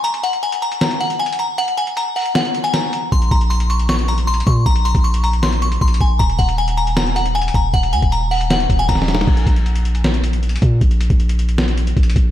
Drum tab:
CC |------------------------------------------------|------------------------------------------------|------------------------------------------------|------------------------------------------------|
HH |x--x--x--x--x--x--x--x--x--x--x--x--x-x-x-x-----|x--x--x--x--x-----o--x--x--x--x--x--x-----x-----|x--x--x--x--x--x--x--x--x--x--x--x--x-x-x-x-----|x--x--x--x--x--x--x--x--x--x--x--x--x-x-x-x-----|
SD |------------------------o-----------------------|------------------------o-----------o-----------|------------------------o-----------------------|------------------------o-----------------------|
BD |------------------------------------------------|------------------------------------------------|o-----o-----------------------------------o-----|o--------o--------------------------o-----o-----|

CC |------------------------------------------------|------------------------------------------------|x-----------------------------------------------|------------------------------------------------|
HH |x--x--x--x--x--x--x--x--x--x--x--x--x-x-x-x-----|x--x--x--x--x-----o--x--x--x--x--x--x-----x-----|---x--x--x--x--x--x--x--x--x--x--x--x-x-x-x-----|x--x--x--x--x--x--x--x--x--x--x--x--x-x-x-x-----|
SD |------------------------o-----------------------|------------------------o-----------o-o-o-o-o-o-|------------------------o-----------------------|------------------------o-----------------------|
BD |o-----o-----------------------------------o-----|o--------o--------------------o-----o-----------|o-----o-----------------------------------o-----|o--------o--------------------------o-----o-----|